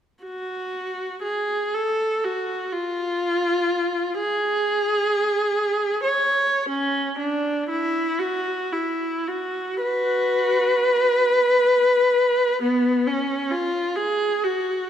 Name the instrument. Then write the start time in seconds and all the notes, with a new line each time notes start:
viola
0.24 F#4
1.23 G#4
1.74 A4
2.24 F#4
2.72 F4
4.20 G#4
6.04 C#5
6.69 C#4
7.19 D4
7.69 E4
8.19 F#4
8.73 E4
9.28 F#4
9.82 F#4 B4
12.62 B3
13.07 C#4
13.51 F4
13.96 G#4
14.44 F#4